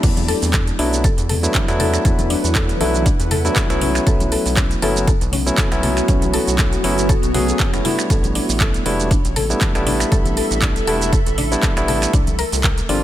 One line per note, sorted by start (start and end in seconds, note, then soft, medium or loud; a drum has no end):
0.00 0.34 E2 loud
0.00 0.76 F#3 medium
0.00 0.76 A3 medium
0.00 0.76 B3 medium
0.00 0.76 D4 medium
0.00 0.12 D4 medium
0.00 0.76 E4 medium
0.00 4.78 E4 medium
0.00 1.55 D5 medium
0.00 kick loud
0.00 closed hi-hat medium
0.00 crash medium
0.04 shaker medium
0.17 closed hi-hat medium
0.17 high conga medium
0.17 shaker soft
0.28 0.34 A4 loud
0.28 open hi-hat loud
0.42 0.72 E2 medium
0.42 5.37 B4 medium
0.42 open hi-hat medium
0.42 shaker medium
0.54 0.59 A4 medium
0.54 kick loud
0.54 clap loud
0.54 closed hi-hat medium
0.54 shaker medium
0.67 closed hi-hat medium
0.67 shaker soft
0.79 1.09 B1 loud
0.79 1.05 F#3 medium
0.79 1.05 A3 medium
0.79 1.05 B3 medium
0.79 0.88 D4 medium
0.79 1.05 D4 medium
0.79 1.05 E4 loud
0.79 open hi-hat loud
0.93 closed hi-hat soft
0.93 shaker medium
1.03 1.10 A4 loud
1.03 4.89 F#5 medium
1.03 kick loud
1.03 closed hi-hat medium
1.03 shaker medium
1.18 1.47 E2 loud
1.18 closed hi-hat medium
1.18 shaker soft
1.29 1.35 A4 medium
1.29 open hi-hat loud
1.29 low conga medium
1.43 1.65 F#3 medium
1.43 1.65 A3 medium
1.43 1.65 B3 medium
1.43 1.65 D4 medium
1.43 1.65 E4 loud
1.43 closed hi-hat soft
1.43 shaker medium
1.54 1.64 D4 medium
1.54 kick loud
1.54 clap loud
1.54 closed hi-hat medium
1.54 high conga medium
1.54 shaker medium
1.68 1.98 E2 medium
1.68 2.78 F#3 loud
1.68 2.78 A3 medium
1.68 2.78 B3 medium
1.68 2.78 D4 medium
1.68 2.78 E4 loud
1.68 finger snap medium
1.68 closed hi-hat medium
1.68 shaker soft
1.79 1.85 A4 loud
1.79 open hi-hat loud
1.79 low conga medium
1.94 finger snap medium
1.94 closed hi-hat soft
1.94 shaker medium
2.05 2.35 E2 loud
2.05 2.10 A4 medium
2.05 kick loud
2.05 closed hi-hat medium
2.05 shaker medium
2.19 closed hi-hat soft
2.19 high conga loud
2.19 shaker soft
2.30 2.39 D4 medium
2.30 open hi-hat loud
2.44 2.73 E2 medium
2.44 closed hi-hat soft
2.44 shaker medium
2.55 2.61 A4 loud
2.55 kick loud
2.55 clap loud
2.55 closed hi-hat medium
2.55 shaker medium
2.69 closed hi-hat medium
2.69 shaker soft
2.81 3.11 B1 loud
2.81 3.07 F#3 medium
2.81 3.07 A3 medium
2.81 3.07 B3 medium
2.81 3.07 D4 medium
2.81 3.07 E4 loud
2.81 2.86 A4 medium
2.81 open hi-hat loud
2.81 high conga medium
2.94 closed hi-hat soft
2.94 shaker medium
3.06 3.15 D4 medium
3.06 kick loud
3.06 closed hi-hat medium
3.06 shaker medium
3.20 3.49 E2 loud
3.20 closed hi-hat medium
3.20 shaker soft
3.31 3.37 A4 loud
3.31 open hi-hat loud
3.31 low conga loud
3.45 3.67 F#3 loud
3.45 3.67 A3 medium
3.45 3.67 B3 medium
3.45 3.67 D4 medium
3.45 3.67 E4 loud
3.45 closed hi-hat soft
3.45 shaker medium
3.56 3.62 A4 medium
3.56 kick loud
3.56 clap loud
3.56 closed hi-hat medium
3.56 high conga loud
3.56 shaker medium
3.70 3.99 B1 medium
3.70 4.79 F#3 loud
3.70 4.80 A3 medium
3.70 4.80 B3 medium
3.70 4.80 C#4 medium
3.70 4.80 E4 loud
3.70 finger snap medium
3.70 closed hi-hat medium
3.70 shaker soft
3.81 9.72 B3 medium
3.81 3.91 C#4 medium
3.81 open hi-hat loud
3.81 low conga loud
3.95 finger snap medium
3.95 closed hi-hat soft
3.95 shaker medium
4.07 4.37 B1 loud
4.07 4.12 A4 loud
4.07 kick loud
4.07 closed hi-hat medium
4.07 shaker medium
4.20 closed hi-hat soft
4.20 high conga loud
4.20 shaker soft
4.32 4.37 A4 medium
4.32 open hi-hat loud
4.46 4.75 B1 medium
4.46 open hi-hat medium
4.46 shaker medium
4.57 4.66 C#4 medium
4.57 9.72 F#4 medium
4.57 kick loud
4.57 clap loud
4.57 closed hi-hat medium
4.57 shaker medium
4.71 closed hi-hat medium
4.71 shaker soft
4.82 5.13 F#1 loud
4.82 5.09 F#3 loud
4.82 5.09 A3 medium
4.82 5.09 B3 medium
4.82 5.09 C#4 medium
4.82 5.09 E4 loud
4.82 4.88 A4 loud
4.82 open hi-hat loud
4.82 high conga medium
4.96 closed hi-hat soft
4.96 shaker medium
5.08 5.13 A4 medium
5.08 9.22 C#5 medium
5.08 kick loud
5.08 closed hi-hat medium
5.08 shaker medium
5.21 5.51 B1 loud
5.21 closed hi-hat medium
5.21 shaker soft
5.32 5.42 C#4 medium
5.32 open hi-hat loud
5.32 low conga medium
5.46 5.68 F#3 loud
5.46 5.68 A3 medium
5.46 5.68 B3 medium
5.46 5.68 C#4 medium
5.46 5.68 E4 loud
5.46 closed hi-hat soft
5.46 shaker medium
5.58 5.63 A4 loud
5.58 kick loud
5.58 clap loud
5.58 closed hi-hat medium
5.58 high conga loud
5.58 shaker medium
5.72 6.01 B1 medium
5.72 6.81 F#3 loud
5.72 6.81 A3 medium
5.72 6.81 B3 medium
5.72 6.81 C#4 medium
5.72 6.81 E4 loud
5.72 finger snap medium
5.72 closed hi-hat soft
5.72 shaker soft
5.83 5.89 A4 medium
5.83 open hi-hat loud
5.83 low conga loud
5.97 finger snap medium
5.97 closed hi-hat soft
5.97 shaker medium
6.08 6.39 B1 loud
6.08 6.17 C#4 medium
6.08 kick loud
6.08 closed hi-hat medium
6.08 shaker medium
6.22 closed hi-hat soft
6.22 high conga loud
6.22 shaker soft
6.33 6.39 A4 loud
6.33 open hi-hat loud
6.47 6.77 B1 medium
6.47 closed hi-hat soft
6.47 shaker medium
6.59 6.64 A4 medium
6.59 kick loud
6.59 clap loud
6.59 closed hi-hat medium
6.59 shaker medium
6.73 closed hi-hat medium
6.73 shaker soft
6.84 7.14 F#1 loud
6.84 7.10 F#3 medium
6.84 7.10 A3 medium
6.84 7.10 B3 medium
6.84 7.10 C#4 medium
6.84 6.93 C#4 medium
6.84 7.10 E4 loud
6.84 open hi-hat loud
6.98 closed hi-hat soft
6.98 shaker medium
7.09 7.15 A4 loud
7.09 kick loud
7.09 closed hi-hat medium
7.09 shaker medium
7.23 7.52 B1 loud
7.23 closed hi-hat medium
7.23 shaker soft
7.34 7.70 F#3 medium
7.34 7.70 A3 medium
7.34 7.70 B3 medium
7.34 7.70 C#4 medium
7.34 7.43 F#4 medium
7.34 7.70 G#4 loud
7.34 open hi-hat loud
7.34 low conga medium
7.48 closed hi-hat soft
7.48 shaker medium
7.60 7.69 A4 medium
7.60 kick loud
7.60 clap loud
7.60 closed hi-hat medium
7.60 high conga loud
7.60 shaker medium
7.73 7.80 F#1 loud
7.73 7.83 F#3 medium
7.73 7.83 A3 medium
7.73 7.83 B3 medium
7.73 7.83 C#4 medium
7.73 7.83 E4 medium
7.73 finger snap medium
7.73 closed hi-hat soft
7.73 shaker soft
7.85 8.83 G3 medium
7.85 8.83 A3 medium
7.85 8.83 B3 medium
7.85 8.83 D4 medium
7.85 8.83 E4 medium
7.85 7.94 E4 loud
7.85 open hi-hat loud
7.85 low conga medium
7.99 finger snap medium
7.99 shaker medium
8.10 8.40 A1 loud
8.10 13.04 A4 medium
8.10 8.16 A4 medium
8.10 kick loud
8.10 closed hi-hat medium
8.10 shaker medium
8.24 closed hi-hat soft
8.24 high conga medium
8.24 shaker soft
8.35 8.44 D4 medium
8.35 open hi-hat loud
8.49 8.78 A1 medium
8.49 open hi-hat medium
8.49 shaker medium
8.60 8.66 A4 loud
8.60 kick loud
8.60 clap loud
8.60 closed hi-hat medium
8.60 shaker medium
8.73 12.77 E5 loud
8.73 closed hi-hat medium
8.73 shaker soft
8.86 9.16 E1 loud
8.86 9.12 G3 loud
8.86 9.12 A3 medium
8.86 9.12 B3 medium
8.86 9.12 D4 medium
8.86 9.12 E4 loud
8.86 8.91 A4 medium
8.86 open hi-hat loud
8.86 high conga medium
9.00 closed hi-hat soft
9.00 shaker medium
9.11 9.20 D4 medium
9.11 kick loud
9.11 closed hi-hat medium
9.11 shaker medium
9.18 12.14 B5 medium
9.25 9.54 A1 loud
9.25 closed hi-hat medium
9.25 shaker soft
9.36 9.42 A4 loud
9.36 open hi-hat loud
9.36 low conga medium
9.50 9.72 G3 loud
9.50 9.72 A3 medium
9.50 9.72 B3 medium
9.50 9.72 D4 medium
9.50 9.72 E4 loud
9.50 closed hi-hat soft
9.50 shaker medium
9.61 9.67 A4 medium
9.61 kick loud
9.61 clap loud
9.61 closed hi-hat medium
9.61 high conga loud
9.61 shaker medium
9.75 10.05 A1 medium
9.75 10.85 G3 loud
9.75 10.85 A3 medium
9.75 10.85 B3 medium
9.75 10.85 D4 medium
9.75 10.85 E4 loud
9.75 finger snap medium
9.75 closed hi-hat medium
9.75 shaker soft
9.87 9.96 D4 medium
9.87 open hi-hat loud
9.87 low conga medium
10.00 finger snap medium
10.00 closed hi-hat soft
10.00 shaker medium
10.12 10.42 A1 loud
10.12 10.17 A4 loud
10.12 kick loud
10.12 closed hi-hat medium
10.12 shaker medium
10.25 closed hi-hat medium
10.25 high conga medium
10.25 shaker soft
10.37 10.42 A4 medium
10.37 open hi-hat loud
10.51 10.80 A1 medium
10.51 closed hi-hat soft
10.51 shaker medium
10.62 10.71 D4 medium
10.62 kick loud
10.62 clap loud
10.62 closed hi-hat medium
10.62 shaker medium
10.76 closed hi-hat medium
10.76 shaker soft
10.87 11.18 E1 loud
10.87 11.14 G3 loud
10.87 11.14 A3 medium
10.87 11.14 B3 medium
10.87 11.14 D4 medium
10.87 11.14 E4 loud
10.87 10.93 A4 loud
10.87 open hi-hat loud
11.01 closed hi-hat soft
11.01 shaker medium
11.13 11.18 A4 medium
11.13 kick loud
11.13 closed hi-hat medium
11.13 shaker medium
11.26 11.56 A1 loud
11.26 closed hi-hat medium
11.26 shaker soft
11.38 11.47 D4 medium
11.38 open hi-hat loud
11.38 low conga medium
11.52 11.73 G3 loud
11.52 11.73 A3 medium
11.52 11.73 B3 medium
11.52 11.73 D4 medium
11.52 11.73 E4 loud
11.52 closed hi-hat soft
11.52 shaker medium
11.62 11.69 A4 loud
11.62 kick loud
11.62 clap loud
11.62 closed hi-hat medium
11.62 high conga medium
11.62 shaker medium
11.77 12.06 A1 medium
11.77 12.12 G3 medium
11.77 12.12 A3 medium
11.77 12.12 B3 medium
11.77 12.12 D4 medium
11.77 12.12 E4 loud
11.77 finger snap medium
11.77 closed hi-hat medium
11.77 shaker soft
11.88 11.94 A4 medium
11.88 open hi-hat loud
11.88 low conga medium
12.02 finger snap medium
12.02 closed hi-hat soft
12.02 shaker medium
12.13 12.44 C2 loud
12.13 13.04 C4 loud
12.13 12.22 D4 medium
12.13 kick loud
12.13 closed hi-hat medium
12.13 shaker medium
12.27 closed hi-hat medium
12.27 high conga medium
12.27 shaker soft
12.39 12.44 A#4 loud
12.39 open hi-hat loud
12.52 12.82 C2 medium
12.52 open hi-hat medium
12.52 shaker medium
12.64 12.69 A#4 medium
12.64 kick loud
12.64 clap loud
12.64 closed hi-hat medium
12.64 shaker medium
12.78 closed hi-hat medium
12.78 shaker soft
12.89 13.04 G1 loud
12.89 13.04 G3 loud
12.89 13.04 A#3 medium
12.89 13.04 C4 medium
12.89 12.98 D4 medium
12.89 13.04 D4 medium
12.89 13.04 F4 loud
12.89 open hi-hat loud
12.89 high conga medium